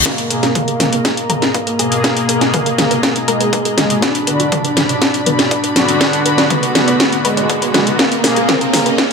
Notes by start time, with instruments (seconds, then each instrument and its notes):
0.06 analog synth bass G#1, synth drone G#2 B2, analog synth lead A#3, string section G#4 D#5 A#5, synth arpeggio sound B4, kick, snare, closed hi-hat, riser
0.18 analog synth bass G#1, closed hi-hat
0.30 analog synth pad B2 A#3 G#4, synth arpeggio sound A#4, closed hi-hat
0.43 analog synth bass G#1, synth arpeggio sound G#4, snare, closed hi-hat
0.55 analog synth bass G#1, synth arpeggio sound B4, kick, closed hi-hat, mid tom
0.68 analog synth bass G#1, synth arpeggio sound A#4, closed hi-hat
0.80 analog synth bass G#2, synth arpeggio sound G#4, snare, closed hi-hat, mid tom
0.93 analog synth bass G#1, synth arpeggio sound B4, closed hi-hat
1.05 analog synth bass G#2, kick, snare, closed hi-hat
1.17 analog synth bass G#1, closed hi-hat
1.30 synth arpeggio sound A#4, closed hi-hat, mid tom
1.42 analog synth bass G#1, synth arpeggio sound B4, snare, closed hi-hat
1.54 analog synth bass G#1, analog synth lead A#3, synth arpeggio sound B4, kick, closed hi-hat
1.67 analog synth bass G#1, synth arpeggio sound A#4, closed hi-hat
1.79 analog synth bass G#2, analog synth pad B2 A#3 G#4, synth arpeggio sound G#4, closed hi-hat
1.92 analog synth bass G#1, closed hi-hat
2.04 synth arpeggio sound B4, kick, snare, closed hi-hat
2.17 analog synth bass G#1, closed hi-hat
2.29 analog synth pad B2 A#3 G#4, synth arpeggio sound A#4, closed hi-hat
2.41 analog synth bass G#1, synth arpeggio sound G#4, snare, closed hi-hat
2.54 analog synth bass G#1, analog synth lead A#3, synth arpeggio sound B4, kick, closed hi-hat, mid tom
2.66 analog synth bass G#1, synth arpeggio sound A#4, closed hi-hat
2.78 analog synth bass G#2, synth arpeggio sound G#4, snare, closed hi-hat, mid tom
2.91 analog synth bass G#1, synth arpeggio sound B4, closed hi-hat
3.03 analog synth bass G#2, kick, snare, closed hi-hat
3.16 analog synth bass G#1, closed hi-hat
3.28 analog synth lead G#3, synth arpeggio sound A#4, closed hi-hat
3.40 analog synth bass G#1, synth arpeggio sound B4, closed hi-hat
3.53 analog synth bass G#1, synth arpeggio sound B4, kick, closed hi-hat
3.65 analog synth bass G#1, synth arpeggio sound A#4, closed hi-hat
3.78 analog synth bass G#2, synth arpeggio sound G#4, snare, closed hi-hat, mid tom
3.90 analog synth bass G#1, closed hi-hat
4.02 analog synth bass B1, analog synth lead D4, string section F#4 D5 B5, synth arpeggio sound D5, kick, snare, closed hi-hat
4.15 analog synth bass B1, closed hi-hat
4.27 analog synth pad D3 B3 F#4, synth arpeggio sound B4, closed hi-hat
4.40 analog synth bass B1, synth arpeggio sound F#4, closed hi-hat
4.52 analog synth bass B1, synth arpeggio sound D5, kick, closed hi-hat, mid tom
4.65 analog synth bass B1, synth arpeggio sound B4, closed hi-hat
4.77 analog synth bass F#1, synth arpeggio sound F#4, snare, closed hi-hat, mid tom
4.89 analog synth bass B1, synth arpeggio sound D5, closed hi-hat
5.02 analog synth bass F#1, kick, snare, closed hi-hat
5.14 analog synth bass B1, closed hi-hat
5.26 synth arpeggio sound B4, closed hi-hat, mid tom
5.39 analog synth bass B1, synth arpeggio sound D5, snare, closed hi-hat
5.51 analog synth bass B1, analog synth lead D4, synth arpeggio sound D5, kick, closed hi-hat
5.64 analog synth bass B1, synth arpeggio sound B4, closed hi-hat
5.76 analog synth bass F#1, analog synth pad D3 B3 F#4, synth arpeggio sound F#4, snare, closed hi-hat
5.88 analog synth bass B1, closed hi-hat
6.01 analog synth bass B1, synth arpeggio sound D5, kick, snare, closed hi-hat
6.13 analog synth bass B1, closed hi-hat
6.26 analog synth pad D3 B3 F#4, synth arpeggio sound B4, closed hi-hat
6.38 analog synth bass B1, synth arpeggio sound F#4, snare, closed hi-hat
6.50 analog synth bass B1, analog synth lead B3, synth arpeggio sound D5, kick, closed hi-hat, mid tom
6.63 analog synth bass B1, synth arpeggio sound B4, closed hi-hat
6.75 analog synth bass F#1, synth arpeggio sound F#4, snare, closed hi-hat, mid tom
6.88 analog synth bass B1, synth arpeggio sound D5, closed hi-hat
7.00 analog synth bass F#1, kick, snare, closed hi-hat
7.12 analog synth bass B1, closed hi-hat
7.25 analog synth lead G#3, synth arpeggio sound B4, closed hi-hat
7.37 analog synth bass F#1, synth arpeggio sound D5, closed hi-hat
7.50 analog synth bass B1, synth arpeggio sound D5, kick, closed hi-hat
7.62 analog synth bass F#1, synth arpeggio sound B4, closed hi-hat
7.74 synth arpeggio sound F#4, snare, closed hi-hat, mid tom
7.87 analog synth bass B1, closed hi-hat
7.99 analog synth bass G#1, analog synth lead A#3, string section G#4 D#5 A#5, synth arpeggio sound B4, kick, snare, closed hi-hat
8.12 analog synth bass G#1, closed hi-hat
8.24 analog synth pad B2 A#3 G#4, synth arpeggio sound A#4, snare, open hi-hat
8.36 analog synth bass G#1, synth arpeggio sound G#4, closed hi-hat
8.49 synth arpeggio sound B4, kick, snare, closed hi-hat, mid tom
8.61 analog synth bass G#1, synth arpeggio sound A#4, closed hi-hat
8.73 analog synth bass G#2, synth arpeggio sound G#4, snare, open hi-hat, mid tom
8.86 analog synth bass G#1, synth arpeggio sound B4, closed hi-hat
8.98 analog synth bass G#2, analog synth lead A#3, synth arpeggio sound B4, kick, snare, closed hi-hat